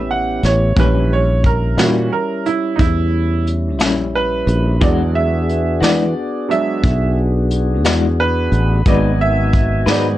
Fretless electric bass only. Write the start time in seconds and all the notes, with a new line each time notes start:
Already playing: A1
0.43 A1
0.77 A#1
1.77 A#2
2.79 E2
3.80 A#1
4.47 A#1
4.82 E2
5.82 E3
6.84 B1
7.84 E2
8.52 A1
8.86 G#1
9.86 G#2